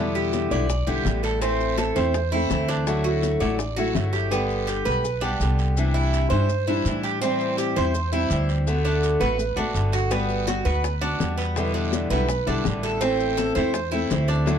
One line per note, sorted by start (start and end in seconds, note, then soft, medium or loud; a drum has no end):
0.00 0.46 E2 medium
0.00 0.50 B2 medium
0.00 0.51 D3 medium
0.00 0.51 G3 medium
0.00 0.50 B3 medium
0.00 0.14 D4 medium
0.00 0.51 E4 medium
0.15 0.50 G4 medium
0.15 high bongo soft
0.15 maracas soft
0.33 high bongo medium
0.33 short guiro medium
0.33 maracas medium
0.51 0.85 B1 medium
0.51 0.67 D3 medium
0.51 0.68 G3 medium
0.51 0.68 B3 medium
0.51 0.68 E4 medium
0.51 0.87 D5 medium
0.51 short guiro medium
0.51 maracas soft
0.68 muted steel-string acoustic guitar stroke medium
0.68 high bongo medium
0.68 long guiro medium
0.68 maracas medium
0.87 1.05 B1 medium
0.87 1.04 D3 medium
0.87 1.05 G3 medium
0.87 1.05 B3 medium
0.87 1.05 E4 medium
0.87 1.23 G4 medium
0.87 high bongo soft
0.87 maracas soft
1.05 1.90 A1 medium
1.05 1.41 D3 soft
1.05 1.41 G3 soft
1.05 1.42 B3 soft
1.05 1.41 E4 medium
1.05 high bongo soft
1.05 low bongo medium
1.05 short guiro medium
1.05 maracas medium
1.23 1.41 A4 medium
1.23 high bongo soft
1.23 short guiro medium
1.23 maracas soft
1.41 2.15 E3 medium
1.41 1.97 A3 medium
1.41 1.77 C4 medium
1.41 1.95 C4 medium
1.41 1.95 E4 medium
1.41 high bongo medium
1.41 long guiro medium
1.41 maracas medium
1.61 high bongo soft
1.61 maracas soft
1.78 1.96 A4 medium
1.78 high bongo medium
1.78 short guiro medium
1.78 maracas medium
1.95 2.47 E2 medium
1.95 2.14 A3 medium
1.95 2.14 C4 medium
1.95 2.13 E4 medium
1.95 2.31 C5 medium
1.95 short guiro medium
1.95 maracas soft
2.14 muted steel-string acoustic guitar stroke medium
2.14 high bongo medium
2.14 long guiro medium
2.14 maracas medium
2.32 2.50 A3 medium
2.32 2.51 C4 medium
2.32 2.67 E4 medium
2.32 2.50 E4 medium
2.32 high bongo soft
2.32 maracas soft
2.50 3.36 D2 medium
2.50 2.86 E3 soft
2.50 2.86 A3 soft
2.50 2.87 C4 soft
2.50 2.87 E4 soft
2.50 high bongo soft
2.50 low bongo medium
2.50 short guiro medium
2.50 maracas medium
2.69 3.04 D4 medium
2.69 high bongo soft
2.69 short guiro medium
2.69 maracas soft
2.86 3.40 D3 medium
2.86 3.41 F#3 medium
2.86 3.41 A3 medium
2.86 3.40 E4 medium
2.86 3.39 F#4 medium
2.86 high bongo medium
2.86 long guiro medium
2.86 maracas medium
3.04 3.40 F#4 medium
3.04 high bongo soft
3.04 maracas soft
3.22 high bongo soft
3.22 short guiro medium
3.22 maracas medium
3.40 3.92 A1 medium
3.40 3.58 F#3 medium
3.40 3.59 A3 medium
3.40 3.59 E4 medium
3.40 3.58 F#4 medium
3.40 3.76 D5 medium
3.40 short guiro medium
3.40 maracas soft
3.59 muted steel-string acoustic guitar stroke medium
3.59 high bongo medium
3.59 long guiro medium
3.59 maracas medium
3.76 3.93 F#3 medium
3.76 3.94 A3 medium
3.76 3.95 E4 medium
3.76 4.12 F#4 medium
3.76 3.95 F#4 medium
3.76 high bongo soft
3.76 maracas soft
3.95 4.80 G1 medium
3.95 4.30 F#3 soft
3.95 4.31 A3 medium
3.95 4.31 E4 soft
3.95 4.32 F#4 soft
3.95 high bongo soft
3.95 low bongo medium
3.95 short guiro medium
3.95 maracas medium
4.13 4.31 G4 medium
4.13 high bongo soft
4.13 short guiro medium
4.13 maracas soft
4.31 4.85 D3 medium
4.31 4.87 G3 medium
4.31 4.67 B3 medium
4.31 4.85 B3 medium
4.31 4.85 G4 medium
4.31 long guiro medium
4.31 maracas medium
4.50 maracas soft
4.67 4.85 G4 medium
4.67 short guiro medium
4.67 maracas medium
4.85 5.37 B1 medium
4.85 5.03 G3 soft
4.85 5.04 B3 medium
4.85 5.03 G4 medium
4.85 5.21 B4 medium
4.85 short guiro medium
4.85 maracas soft
5.04 muted steel-string acoustic guitar stroke medium
5.04 long guiro medium
5.04 maracas medium
5.21 5.40 G3 medium
5.21 5.40 B3 medium
5.21 5.57 D4 medium
5.21 5.40 G4 medium
5.21 maracas soft
5.40 6.25 C2 medium
5.40 5.76 D3 soft
5.40 5.77 G3 soft
5.40 5.77 B3 medium
5.40 5.77 G4 medium
5.40 short guiro medium
5.40 maracas medium
5.59 short guiro medium
5.59 maracas soft
5.77 6.31 C3 medium
5.77 6.33 E3 medium
5.77 6.32 G3 medium
5.77 6.31 D4 medium
5.77 6.31 E4 medium
5.77 long guiro medium
5.77 maracas medium
5.94 6.29 E4 medium
5.94 maracas soft
6.13 short guiro medium
6.13 maracas medium
6.30 6.82 G2 medium
6.30 6.48 E3 medium
6.30 6.48 G3 medium
6.30 6.49 D4 medium
6.30 6.49 E4 medium
6.30 6.66 C5 medium
6.30 short guiro medium
6.30 maracas soft
6.49 muted steel-string acoustic guitar stroke medium
6.49 long guiro medium
6.49 maracas medium
6.67 6.86 E3 medium
6.67 6.86 G3 medium
6.67 6.85 D4 medium
6.67 7.03 E4 medium
6.67 6.85 E4 medium
6.67 maracas soft
6.85 7.70 A2 medium
6.85 7.21 E3 soft
6.85 7.22 G3 soft
6.85 7.22 D4 medium
6.85 7.23 E4 medium
6.85 short guiro medium
6.85 maracas medium
7.03 7.21 G4 medium
7.03 short guiro medium
7.03 maracas soft
7.21 7.76 E3 medium
7.21 7.76 G3 medium
7.21 7.57 C4 medium
7.21 7.76 C4 medium
7.21 7.75 E4 medium
7.21 long guiro medium
7.21 maracas medium
7.41 maracas soft
7.57 7.76 G4 medium
7.57 short guiro medium
7.57 maracas medium
7.76 8.27 E2 medium
7.76 7.93 G3 medium
7.76 7.94 C4 medium
7.76 7.94 E4 medium
7.76 8.11 C5 medium
7.76 short guiro medium
7.76 maracas soft
7.94 muted steel-string acoustic guitar stroke medium
7.94 long guiro medium
7.94 maracas medium
8.12 8.29 G3 medium
8.12 8.30 C4 medium
8.12 8.30 E4 medium
8.12 8.48 E4 medium
8.12 maracas soft
8.30 9.15 D2 loud
8.30 8.66 E3 medium
8.30 8.66 G3 medium
8.30 8.66 C4 medium
8.30 8.67 E4 medium
8.30 short guiro medium
8.30 maracas medium
8.49 short guiro medium
8.49 maracas soft
8.67 9.20 D3 medium
8.67 9.20 A3 medium
8.67 9.20 B3 medium
8.67 9.19 F#4 medium
8.67 long guiro medium
8.67 maracas medium
8.85 9.20 D4 medium
8.85 maracas soft
9.03 short guiro medium
9.03 maracas medium
9.20 9.55 A1 medium
9.20 9.38 A3 soft
9.20 9.38 B3 medium
9.20 9.38 F#4 medium
9.20 9.56 B4 medium
9.20 short guiro medium
9.20 maracas soft
9.38 muted steel-string acoustic guitar stroke medium
9.38 long guiro medium
9.38 maracas medium
9.56 9.74 A1 medium
9.56 9.74 A3 medium
9.56 9.75 B3 medium
9.56 9.92 D4 medium
9.56 9.74 F#4 medium
9.56 maracas soft
9.74 10.60 G1 medium
9.74 10.10 D3 soft
9.74 10.10 A3 soft
9.74 10.10 B3 soft
9.74 10.11 F#4 medium
9.74 short guiro medium
9.74 maracas medium
9.93 10.11 F#4 medium
9.93 short guiro medium
9.93 maracas soft
10.11 10.69 G3 medium
10.11 10.67 B3 medium
10.11 10.47 B3 medium
10.11 10.65 F#4 medium
10.11 high bongo medium
10.11 long guiro medium
10.11 maracas medium
10.29 high bongo soft
10.29 maracas soft
10.47 10.65 F#4 medium
10.47 high bongo medium
10.47 short guiro medium
10.47 maracas medium
10.65 11.16 D2 medium
10.65 10.83 B3 medium
10.65 10.83 F#4 medium
10.65 11.01 B4 medium
10.65 short guiro medium
10.65 maracas soft
10.84 muted steel-string acoustic guitar stroke medium
10.84 high bongo medium
10.84 long guiro medium
10.84 maracas medium
11.01 11.19 B3 soft
11.01 11.37 D4 medium
11.01 11.19 F#4 medium
11.01 high bongo soft
11.01 maracas soft
11.19 12.05 E2 medium
11.19 11.55 G3 soft
11.19 11.56 B3 soft
11.19 11.56 F#4 soft
11.19 high bongo soft
11.19 low bongo medium
11.19 short guiro medium
11.19 maracas medium
11.38 11.73 B3 medium
11.38 high bongo soft
11.38 short guiro medium
11.38 maracas soft
11.56 12.10 B2 medium
11.56 12.10 D3 medium
11.56 12.11 G3 medium
11.56 12.11 B3 medium
11.56 12.11 E4 medium
11.56 high bongo medium
11.56 long guiro medium
11.56 maracas medium
11.74 12.10 D4 medium
11.74 high bongo soft
11.74 maracas soft
11.93 high bongo medium
11.93 short guiro medium
11.93 maracas medium
12.10 12.44 B1 medium
12.10 12.28 D3 medium
12.10 12.28 G3 medium
12.10 12.28 B3 medium
12.10 12.28 E4 medium
12.10 12.46 B4 medium
12.10 short guiro medium
12.10 maracas soft
12.29 muted steel-string acoustic guitar stroke medium
12.29 high bongo medium
12.29 long guiro medium
12.29 maracas medium
12.47 12.64 B1 medium
12.47 12.64 D3 medium
12.47 12.65 G3 medium
12.47 12.65 B3 medium
12.47 12.83 D4 medium
12.47 12.64 E4 medium
12.47 high bongo soft
12.47 maracas soft
12.65 13.50 A1 medium
12.65 13.00 D3 soft
12.65 13.01 G3 medium
12.65 13.02 B3 medium
12.65 13.01 E4 medium
12.65 high bongo soft
12.65 low bongo medium
12.65 short guiro medium
12.65 maracas medium
12.83 13.01 A4 medium
12.83 high bongo soft
12.83 short guiro medium
12.83 maracas soft
13.00 13.74 E3 medium
13.00 13.58 A3 medium
13.00 13.37 C4 medium
13.00 13.56 C4 medium
13.00 13.56 E4 medium
13.00 high bongo medium
13.00 long guiro medium
13.00 maracas medium
13.20 high bongo soft
13.20 maracas soft
13.37 13.55 A4 medium
13.37 high bongo medium
13.37 short guiro medium
13.37 maracas medium
13.55 14.07 E2 medium
13.55 13.73 A3 medium
13.55 13.74 C4 medium
13.55 13.74 E4 medium
13.55 13.91 C5 medium
13.55 short guiro medium
13.55 maracas soft
13.74 muted steel-string acoustic guitar stroke medium
13.74 high bongo medium
13.74 long guiro medium
13.74 maracas medium
13.92 14.10 A3 medium
13.92 14.10 C4 medium
13.92 14.27 E4 medium
13.92 14.10 E4 medium
13.92 high bongo soft
13.92 maracas soft
14.10 14.59 D2 loud
14.10 14.45 E3 soft
14.10 14.45 A3 soft
14.10 14.46 C4 medium
14.10 14.46 E4 medium
14.10 high bongo soft
14.10 low bongo medium
14.10 short guiro medium
14.10 maracas medium
14.28 14.59 D4 medium
14.28 high bongo soft
14.28 short guiro medium
14.28 maracas soft
14.45 14.59 D3 medium
14.45 14.59 F#3 medium
14.45 14.59 A3 medium
14.45 14.59 E4 medium
14.45 14.59 F#4 medium
14.45 high bongo medium
14.45 long guiro medium
14.45 maracas medium